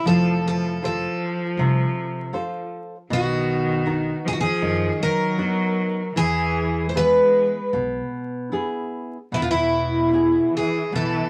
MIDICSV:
0, 0, Header, 1, 5, 480
1, 0, Start_track
1, 0, Tempo, 763359
1, 29, Time_signature, 4, 2, 24, 8
1, 3389, Tempo, 781250
1, 4829, Tempo, 797872
1, 6972, End_track
2, 0, Start_track
2, 0, Title_t, "Twelve-string acoustic guitar"
2, 0, Program_c, 0, 25
2, 45, Note_on_c, 0, 69, 86
2, 286, Note_off_c, 0, 69, 0
2, 299, Note_on_c, 0, 69, 80
2, 527, Note_off_c, 0, 69, 0
2, 535, Note_on_c, 0, 69, 75
2, 1691, Note_off_c, 0, 69, 0
2, 1969, Note_on_c, 0, 66, 87
2, 2687, Note_off_c, 0, 66, 0
2, 2689, Note_on_c, 0, 68, 85
2, 2718, Note_off_c, 0, 68, 0
2, 2721, Note_on_c, 0, 66, 66
2, 2759, Note_off_c, 0, 66, 0
2, 2770, Note_on_c, 0, 68, 87
2, 3158, Note_off_c, 0, 68, 0
2, 3161, Note_on_c, 0, 70, 91
2, 3868, Note_off_c, 0, 70, 0
2, 3870, Note_on_c, 0, 68, 107
2, 4309, Note_off_c, 0, 68, 0
2, 4312, Note_on_c, 0, 72, 61
2, 4352, Note_off_c, 0, 72, 0
2, 4360, Note_on_c, 0, 71, 90
2, 4809, Note_off_c, 0, 71, 0
2, 5797, Note_on_c, 0, 64, 80
2, 5832, Note_off_c, 0, 64, 0
2, 5845, Note_on_c, 0, 65, 68
2, 5880, Note_off_c, 0, 65, 0
2, 5896, Note_on_c, 0, 64, 84
2, 6500, Note_off_c, 0, 64, 0
2, 6534, Note_on_c, 0, 68, 71
2, 6765, Note_off_c, 0, 68, 0
2, 6768, Note_on_c, 0, 69, 85
2, 6972, Note_off_c, 0, 69, 0
2, 6972, End_track
3, 0, Start_track
3, 0, Title_t, "Nylon-string guitar"
3, 0, Program_c, 1, 24
3, 35, Note_on_c, 1, 53, 68
3, 502, Note_off_c, 1, 53, 0
3, 518, Note_on_c, 1, 65, 46
3, 525, Note_on_c, 1, 69, 42
3, 528, Note_on_c, 1, 72, 49
3, 899, Note_off_c, 1, 65, 0
3, 903, Note_off_c, 1, 69, 0
3, 904, Note_off_c, 1, 72, 0
3, 1000, Note_on_c, 1, 48, 70
3, 1456, Note_off_c, 1, 48, 0
3, 1464, Note_on_c, 1, 65, 51
3, 1467, Note_on_c, 1, 69, 49
3, 1471, Note_on_c, 1, 72, 58
3, 1850, Note_off_c, 1, 65, 0
3, 1852, Note_off_c, 1, 69, 0
3, 1854, Note_off_c, 1, 72, 0
3, 1951, Note_on_c, 1, 47, 71
3, 2418, Note_off_c, 1, 47, 0
3, 2426, Note_on_c, 1, 59, 54
3, 2430, Note_on_c, 1, 63, 49
3, 2431, Note_on_c, 1, 66, 56
3, 2810, Note_off_c, 1, 59, 0
3, 2812, Note_off_c, 1, 66, 0
3, 2813, Note_off_c, 1, 63, 0
3, 2905, Note_on_c, 1, 51, 70
3, 3372, Note_off_c, 1, 51, 0
3, 3382, Note_on_c, 1, 59, 51
3, 3386, Note_on_c, 1, 63, 47
3, 3389, Note_on_c, 1, 66, 56
3, 3768, Note_off_c, 1, 59, 0
3, 3771, Note_off_c, 1, 63, 0
3, 3771, Note_off_c, 1, 66, 0
3, 3862, Note_on_c, 1, 52, 68
3, 4332, Note_off_c, 1, 52, 0
3, 4348, Note_on_c, 1, 59, 45
3, 4351, Note_on_c, 1, 64, 41
3, 4352, Note_on_c, 1, 68, 48
3, 4732, Note_off_c, 1, 59, 0
3, 4732, Note_off_c, 1, 64, 0
3, 4734, Note_off_c, 1, 68, 0
3, 4827, Note_on_c, 1, 47, 61
3, 5290, Note_off_c, 1, 47, 0
3, 5301, Note_on_c, 1, 59, 45
3, 5304, Note_on_c, 1, 64, 45
3, 5308, Note_on_c, 1, 68, 53
3, 5688, Note_off_c, 1, 59, 0
3, 5689, Note_off_c, 1, 64, 0
3, 5692, Note_off_c, 1, 68, 0
3, 5784, Note_on_c, 1, 47, 59
3, 6255, Note_off_c, 1, 47, 0
3, 6270, Note_on_c, 1, 59, 44
3, 6273, Note_on_c, 1, 64, 37
3, 6275, Note_on_c, 1, 68, 51
3, 6655, Note_off_c, 1, 59, 0
3, 6656, Note_off_c, 1, 64, 0
3, 6658, Note_off_c, 1, 68, 0
3, 6749, Note_on_c, 1, 47, 64
3, 6972, Note_off_c, 1, 47, 0
3, 6972, End_track
4, 0, Start_track
4, 0, Title_t, "Cello"
4, 0, Program_c, 2, 42
4, 35, Note_on_c, 2, 53, 73
4, 257, Note_off_c, 2, 53, 0
4, 289, Note_on_c, 2, 53, 62
4, 506, Note_off_c, 2, 53, 0
4, 529, Note_on_c, 2, 53, 80
4, 1688, Note_off_c, 2, 53, 0
4, 1961, Note_on_c, 2, 51, 80
4, 2651, Note_off_c, 2, 51, 0
4, 2671, Note_on_c, 2, 53, 75
4, 2700, Note_off_c, 2, 53, 0
4, 2704, Note_on_c, 2, 51, 62
4, 2747, Note_off_c, 2, 51, 0
4, 2758, Note_on_c, 2, 53, 77
4, 3124, Note_off_c, 2, 53, 0
4, 3146, Note_on_c, 2, 54, 86
4, 3842, Note_off_c, 2, 54, 0
4, 3861, Note_on_c, 2, 52, 75
4, 4279, Note_off_c, 2, 52, 0
4, 4298, Note_on_c, 2, 57, 47
4, 4341, Note_off_c, 2, 57, 0
4, 4346, Note_on_c, 2, 56, 77
4, 4802, Note_off_c, 2, 56, 0
4, 5783, Note_on_c, 2, 47, 57
4, 5824, Note_off_c, 2, 47, 0
4, 5829, Note_on_c, 2, 50, 50
4, 5869, Note_off_c, 2, 50, 0
4, 5876, Note_on_c, 2, 47, 67
4, 6490, Note_off_c, 2, 47, 0
4, 6515, Note_on_c, 2, 52, 67
4, 6736, Note_off_c, 2, 52, 0
4, 6755, Note_on_c, 2, 52, 76
4, 6972, Note_off_c, 2, 52, 0
4, 6972, End_track
5, 0, Start_track
5, 0, Title_t, "Upright bass"
5, 0, Program_c, 3, 32
5, 30, Note_on_c, 3, 29, 69
5, 655, Note_off_c, 3, 29, 0
5, 989, Note_on_c, 3, 36, 91
5, 1144, Note_off_c, 3, 36, 0
5, 1950, Note_on_c, 3, 35, 76
5, 2574, Note_off_c, 3, 35, 0
5, 2904, Note_on_c, 3, 42, 89
5, 3061, Note_off_c, 3, 42, 0
5, 3863, Note_on_c, 3, 40, 80
5, 4489, Note_off_c, 3, 40, 0
5, 4827, Note_on_c, 3, 35, 84
5, 4982, Note_off_c, 3, 35, 0
5, 5783, Note_on_c, 3, 40, 75
5, 6411, Note_off_c, 3, 40, 0
5, 6749, Note_on_c, 3, 35, 87
5, 6904, Note_off_c, 3, 35, 0
5, 6972, End_track
0, 0, End_of_file